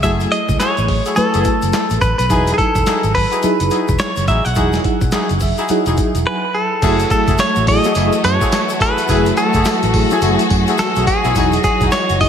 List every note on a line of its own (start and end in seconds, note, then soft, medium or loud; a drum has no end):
0.00 0.24 F#1 loud
0.00 0.03 F#3 medium
0.00 0.74 F#3 medium
0.00 0.03 A3 medium
0.00 0.30 A3 medium
0.00 0.74 A3 medium
0.00 0.04 E4 medium
0.00 0.30 E4 medium
0.00 0.74 E4 medium
0.00 0.30 F#4 medium
0.00 0.04 G#4 medium
0.00 0.30 G#4 loud
0.00 0.11 E5 medium
0.00 kick loud
0.00 closed hi-hat medium
0.00 shaker medium
0.04 0.74 G#4 medium
0.20 closed hi-hat medium
0.20 shaker soft
0.32 0.59 D#5 loud
0.32 closed hi-hat medium
0.49 0.57 C#2 medium
0.49 kick loud
0.49 closed hi-hat medium
0.49 shaker medium
0.60 0.77 A3 medium
0.60 0.77 E4 medium
0.60 0.77 F#4 medium
0.60 0.77 G#4 medium
0.60 1.18 C#5 medium
0.60 muted fingered electric bass stroke soft
0.60 snare loud
0.60 clap loud
0.60 closed hi-hat medium
0.60 shaker medium
0.77 0.99 A1 medium
0.77 closed hi-hat soft
0.77 shaker soft
0.88 kick medium
0.88 open hi-hat medium
1.06 1.16 A3 medium
1.06 1.16 E4 medium
1.06 1.16 F#4 medium
1.06 1.17 G#4 medium
1.06 closed hi-hat soft
1.06 shaker medium
1.16 1.87 F#3 medium
1.16 1.87 A3 medium
1.16 1.87 E4 medium
1.16 2.01 A4 medium
1.16 1.88 B4 medium
1.16 muted fingered electric bass stroke soft
1.16 closed hi-hat medium
1.16 shaker medium
1.33 1.43 F#1 medium
1.33 1.44 A3 medium
1.33 1.44 E4 medium
1.33 1.45 F#4 medium
1.33 1.45 G#4 medium
1.33 closed hi-hat medium
1.33 shaker soft
1.44 kick loud
1.44 closed hi-hat medium
1.44 shaker medium
1.62 1.71 F#1 medium
1.62 closed hi-hat soft
1.62 shaker medium
1.73 snare loud
1.73 clap medium
1.73 closed hi-hat medium
1.73 shaker medium
1.90 1.99 A1 medium
1.90 closed hi-hat medium
1.90 shaker medium
2.01 2.14 A1 medium
2.01 2.17 B4 loud
2.01 kick loud
2.01 closed hi-hat medium
2.01 shaker soft
2.18 2.27 B1 medium
2.18 2.53 B4 medium
2.18 closed hi-hat medium
2.18 shaker soft
2.30 2.51 E1 loud
2.30 3.00 F#3 medium
2.30 2.56 D#4 medium
2.30 3.00 D#4 medium
2.30 2.56 E4 medium
2.30 3.01 E4 medium
2.30 2.56 F#4 medium
2.30 2.57 G#4 medium
2.30 3.01 G#5 medium
2.30 kick loud
2.30 closed hi-hat medium
2.30 shaker medium
2.47 closed hi-hat medium
2.47 shaker medium
2.54 2.58 G#4 medium
2.58 3.14 A4 loud
2.58 kick loud
2.58 closed hi-hat medium
2.75 2.84 E1 medium
2.75 kick loud
2.75 closed hi-hat medium
2.75 shaker medium
2.86 3.03 D#4 medium
2.86 3.03 E4 medium
2.86 3.03 F#4 medium
2.86 3.04 G#4 medium
2.86 snare loud
2.86 clap loud
2.86 closed hi-hat medium
2.86 shaker medium
3.03 3.25 G#1 medium
3.03 closed hi-hat medium
3.03 shaker soft
3.15 4.02 B4 medium
3.15 kick medium
3.15 open hi-hat medium
3.31 3.42 D#4 medium
3.31 3.43 E4 medium
3.31 3.43 F#4 medium
3.31 3.43 G#4 medium
3.31 closed hi-hat soft
3.31 shaker medium
3.43 4.14 F#3 medium
3.43 4.14 D#4 medium
3.43 4.14 E4 medium
3.43 4.14 G#4 medium
3.43 muted fingered electric bass stroke soft
3.43 closed hi-hat medium
3.43 shaker medium
3.60 3.69 F#1 medium
3.60 closed hi-hat medium
3.60 shaker soft
3.70 3.88 D#4 medium
3.70 3.88 E4 medium
3.70 3.88 F#4 medium
3.70 3.88 G#4 medium
3.70 closed hi-hat medium
3.70 shaker medium
3.88 3.97 E1 medium
3.88 kick medium
3.88 closed hi-hat soft
3.88 shaker medium
3.99 4.28 C#5 loud
3.99 snare loud
3.99 clap medium
3.99 closed hi-hat medium
3.99 shaker medium
4.16 4.25 F#1 medium
4.16 closed hi-hat medium
4.16 shaker medium
4.27 4.41 A1 loud
4.27 4.45 D#4 medium
4.27 4.45 E4 medium
4.27 4.45 F#4 medium
4.27 4.45 G#4 medium
4.27 4.45 E5 loud
4.27 kick loud
4.27 closed hi-hat medium
4.27 shaker soft
4.45 4.54 B1 medium
4.45 5.30 F#5 medium
4.45 closed hi-hat medium
4.45 shaker soft
4.55 4.77 E1 loud
4.55 5.27 F#3 medium
4.55 4.83 D#4 medium
4.55 5.27 D#4 medium
4.55 4.83 E4 medium
4.55 5.27 E4 medium
4.55 4.83 F#4 medium
4.55 4.83 G#4 loud
4.55 5.27 G#4 medium
4.55 kick loud
4.55 closed hi-hat medium
4.55 shaker medium
4.73 snare medium
4.73 closed hi-hat medium
4.73 shaker soft
4.84 kick loud
4.84 closed hi-hat medium
5.01 5.10 B1 medium
5.01 kick loud
5.01 closed hi-hat medium
5.01 shaker medium
5.12 5.29 D#4 medium
5.12 5.30 E4 medium
5.12 5.30 F#4 medium
5.12 5.30 G#4 medium
5.12 snare loud
5.12 clap medium
5.12 closed hi-hat medium
5.12 shaker medium
5.29 5.51 F#1 loud
5.29 closed hi-hat soft
5.29 shaker soft
5.40 5.68 E5 medium
5.40 kick medium
5.40 open hi-hat medium
5.40 shaker medium
5.58 5.69 D#4 medium
5.58 5.69 E4 medium
5.58 5.69 F#4 medium
5.58 5.69 G#4 medium
5.58 closed hi-hat soft
5.58 shaker medium
5.68 6.40 F#3 loud
5.68 6.40 D#4 medium
5.68 6.41 E4 medium
5.68 6.41 G#4 medium
5.68 6.22 F#5 medium
5.68 muted fingered electric bass stroke soft
5.68 closed hi-hat medium
5.68 shaker medium
5.86 5.95 E1 medium
5.86 5.97 D#4 medium
5.86 5.97 E4 medium
5.86 5.98 F#4 medium
5.86 5.98 G#4 medium
5.86 closed hi-hat medium
5.86 shaker medium
5.97 kick loud
5.97 closed hi-hat medium
5.97 shaker medium
6.15 6.23 E1 loud
6.15 closed hi-hat soft
6.15 shaker medium
6.27 6.55 B4 loud
6.27 6.43 G#5 medium
6.45 6.81 B5 medium
6.55 7.10 A4 medium
6.82 7.03 F#1 loud
6.82 12.29 E3 medium
6.82 12.29 F#3 medium
6.82 7.35 F#3 medium
6.82 6.99 A3 medium
6.82 11.32 A3 medium
6.82 7.35 A3 medium
6.82 6.99 E4 medium
6.82 7.36 E4 medium
6.82 6.99 F#4 medium
6.82 12.29 F#4 medium
6.82 7.00 G#4 loud
6.82 7.36 G#4 medium
6.82 kick loud
6.82 closed hi-hat medium
6.82 crash loud
6.82 tambourine medium
6.82 shaker medium
6.99 closed hi-hat medium
6.99 shaker medium
7.10 7.37 A4 medium
7.10 kick loud
7.10 closed hi-hat medium
7.10 shaker medium
7.27 7.36 F#1 medium
7.27 7.39 A3 medium
7.27 7.39 E4 medium
7.27 7.39 F#4 medium
7.27 7.39 G#4 medium
7.27 kick loud
7.27 closed hi-hat medium
7.27 shaker medium
7.38 7.66 C#5 medium
7.38 muted fingered electric bass stroke soft
7.38 snare loud
7.38 clap loud
7.38 closed hi-hat medium
7.38 tambourine medium
7.38 shaker medium
7.56 7.77 A1 loud
7.56 closed hi-hat medium
7.56 shaker soft
7.67 7.78 F#3 medium
7.67 7.78 A3 medium
7.67 7.78 E4 medium
7.67 7.79 G#4 medium
7.67 8.24 D#5 medium
7.67 kick medium
7.67 open hi-hat medium
7.67 tambourine medium
7.84 8.50 F#3 medium
7.84 7.94 A3 medium
7.84 8.51 A3 medium
7.84 7.94 E4 medium
7.84 8.51 E4 medium
7.84 7.94 F#4 medium
7.84 7.95 G#4 medium
7.84 8.51 G#4 medium
7.84 closed hi-hat medium
7.84 shaker medium
7.95 8.09 F#1 medium
7.95 8.13 A3 medium
7.95 8.13 E4 medium
7.95 8.13 F#4 medium
7.95 8.13 G#4 medium
7.95 closed hi-hat medium
7.95 tambourine medium
7.95 shaker medium
8.12 closed hi-hat medium
8.12 shaker medium
8.24 8.37 F#2 loud
8.24 8.81 C#5 medium
8.24 closed hi-hat medium
8.24 tambourine medium
8.41 8.52 A3 medium
8.41 8.52 E4 medium
8.41 8.52 F#4 medium
8.41 8.52 G#4 medium
8.41 kick medium
8.41 closed hi-hat soft
8.41 shaker medium
8.52 snare loud
8.52 clap medium
8.52 closed hi-hat medium
8.52 tambourine medium
8.52 shaker medium
8.69 closed hi-hat medium
8.69 shaker medium
8.80 8.98 A3 medium
8.80 8.98 E4 medium
8.80 8.98 F#4 medium
8.80 8.98 G#4 medium
8.80 9.40 B4 loud
8.80 kick loud
8.80 closed hi-hat medium
8.80 tambourine medium
8.98 closed hi-hat medium
8.98 shaker medium
9.08 9.30 F#1 loud
9.08 9.62 F#3 medium
9.08 9.26 A3 medium
9.08 9.62 A3 medium
9.08 9.26 E4 medium
9.08 9.62 E4 medium
9.08 9.26 F#4 medium
9.08 9.26 G#4 loud
9.08 9.62 G#4 medium
9.08 kick medium
9.08 closed hi-hat medium
9.08 tambourine medium
9.08 shaker medium
9.25 closed hi-hat medium
9.25 shaker soft
9.37 10.32 A4 medium
9.37 closed hi-hat medium
9.37 shaker medium
9.53 9.63 F#1 loud
9.53 9.65 A3 medium
9.53 9.65 E4 medium
9.53 9.66 F#4 medium
9.53 9.66 G#4 medium
9.53 kick loud
9.53 closed hi-hat medium
9.53 shaker medium
9.65 muted fingered electric bass stroke soft
9.65 snare loud
9.65 clap loud
9.65 closed hi-hat medium
9.65 tambourine medium
9.65 shaker medium
9.82 10.04 A1 loud
9.82 closed hi-hat medium
9.82 shaker soft
9.94 10.04 F#3 medium
9.94 10.05 A3 medium
9.94 10.05 E4 medium
9.94 10.05 G#4 medium
9.94 kick medium
9.94 open hi-hat medium
9.94 tambourine medium
10.10 10.77 F#3 loud
10.10 10.21 A3 medium
10.10 10.77 A3 medium
10.10 10.21 E4 medium
10.10 10.77 E4 medium
10.10 10.21 F#4 medium
10.10 10.21 G#4 medium
10.10 10.78 G#5 loud
10.10 closed hi-hat soft
10.10 shaker medium
10.21 10.35 F#1 loud
10.21 10.39 A3 medium
10.21 10.39 E4 medium
10.21 10.39 F#4 medium
10.21 10.39 G#4 medium
10.21 closed hi-hat medium
10.21 tambourine medium
10.21 shaker medium
10.32 10.78 G#4 medium
10.39 closed hi-hat medium
10.39 shaker soft
10.50 10.63 F#2 loud
10.50 kick loud
10.50 closed hi-hat medium
10.50 tambourine medium
10.67 10.79 A3 medium
10.67 10.79 E4 medium
10.67 10.79 F#4 medium
10.67 10.79 G#4 medium
10.67 closed hi-hat soft
10.67 shaker medium
10.78 11.07 A4 medium
10.78 muted fingered electric bass stroke soft
10.78 snare loud
10.78 clap medium
10.78 closed hi-hat medium
10.78 tambourine medium
10.78 shaker medium
10.96 11.04 B1 medium
10.96 11.07 A3 medium
10.96 11.07 E4 medium
10.96 11.07 F#4 medium
10.96 11.07 G#4 medium
10.96 closed hi-hat medium
10.96 shaker medium
11.07 11.63 G#4 medium
11.07 kick loud
11.07 closed hi-hat medium
11.07 tambourine medium
11.24 11.33 B1 medium
11.24 11.35 A3 medium
11.24 11.35 E4 medium
11.24 11.35 F#4 medium
11.24 11.35 G#4 medium
11.24 closed hi-hat medium
11.24 shaker soft
11.35 11.57 E1 loud
11.35 11.88 F#3 medium
11.35 11.53 D#4 medium
11.35 11.88 D#4 medium
11.35 11.53 E4 medium
11.35 11.88 E4 medium
11.35 11.53 F#4 medium
11.35 11.53 G#4 loud
11.35 11.89 G#4 medium
11.35 12.29 D#5 medium
11.35 kick loud
11.35 closed hi-hat medium
11.35 tambourine medium
11.35 shaker medium
11.52 closed hi-hat medium
11.52 shaker soft
11.64 11.90 G#4 medium
11.64 kick loud
11.64 closed hi-hat medium
11.64 shaker medium
11.81 11.89 E1 medium
11.81 11.92 D#4 medium
11.81 11.92 E4 medium
11.81 11.92 F#4 medium
11.81 11.92 G#4 medium
11.81 kick loud
11.81 closed hi-hat medium
11.81 shaker medium
11.92 12.20 C#5 medium
11.92 snare loud
11.92 clap medium
11.92 closed hi-hat medium
11.92 tambourine medium
11.92 shaker medium
12.09 12.29 F#1 loud
12.09 closed hi-hat soft
12.09 shaker medium
12.20 12.29 F#3 medium
12.20 12.29 D#4 medium
12.20 12.29 E4 medium
12.20 12.29 G#4 medium
12.20 12.29 D#5 loud
12.20 kick medium
12.20 open hi-hat medium
12.20 tambourine medium